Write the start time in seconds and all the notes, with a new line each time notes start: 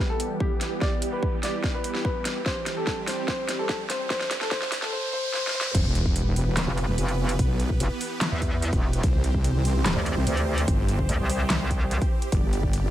Already playing: E3 G3 B3 G4, riser
0.10 A4
0.20 closed hi-hat
0.40 G4, kick
0.61 snare, closed hi-hat
0.81 D5, kick, snare
1.02 closed hi-hat
1.12 B4
1.23 kick
1.43 D5, snare, open hi-hat
1.64 kick, snare
1.74 B4
1.84 closed hi-hat
1.95 snare
2.05 B4, kick
2.25 snare, closed hi-hat
2.46 G3 C4 G4 C5, kick, snare
2.66 snare, closed hi-hat
2.77 A4
2.87 kick, snare
3.08 C5, snare, open hi-hat
3.28 C5, kick, snare
3.49 snare, closed hi-hat
3.59 A4
3.69 kick, snare
3.90 C5, snare, closed hi-hat
4.10 C5, kick, snare
4.21 snare
4.31 snare, closed hi-hat
4.41 A4, snare
4.51 C5, kick, snare
4.62 snare
4.72 snare, open hi-hat
4.82 A4, snare
4.93 C5
5.13 C5
5.34 C5, snare
5.47 snare
5.54 C5
5.61 snare
5.75 E1 E3 B3 G4 B4, kick, closed hi-hat, crash, sub drop
5.85 E1
5.95 closed hi-hat
6.06 kick
6.16 closed hi-hat
6.26 E1
6.36 open hi-hat
6.57 snare, clap, closed hi-hat
6.67 F1
6.78 closed hi-hat
6.88 E1
6.98 F1, closed hi-hat
7.08 closed hi-hat
7.29 closed hi-hat
7.39 B1, kick, closed hi-hat
7.60 closed hi-hat
7.70 kick
7.80 F1, closed hi-hat
8.01 open hi-hat
8.21 snare, clap, closed hi-hat
8.32 E2
8.42 kick, closed hi-hat
8.62 closed hi-hat
8.73 E1, kick, closed hi-hat
8.93 closed hi-hat
9.03 C2 C4 C5, kick, closed hi-hat
9.14 C2
9.24 closed hi-hat
9.34 kick
9.44 closed hi-hat
9.55 C2
9.65 open hi-hat
9.86 snare, clap, closed hi-hat
9.96 D2
10.06 closed hi-hat
10.17 C2
10.27 D2, closed hi-hat
10.37 closed hi-hat
10.58 closed hi-hat
10.68 G1, kick, closed hi-hat
10.88 closed hi-hat
10.99 kick
11.09 D2, closed hi-hat
11.19 C2
11.30 open hi-hat
11.50 snare, clap, closed hi-hat
11.71 kick, closed hi-hat
11.91 closed hi-hat
12.02 kick, closed hi-hat
12.22 closed hi-hat
12.32 G1 D3 B3 D5, kick, closed hi-hat
12.43 G1
12.53 closed hi-hat
12.63 kick
12.73 closed hi-hat
12.84 G1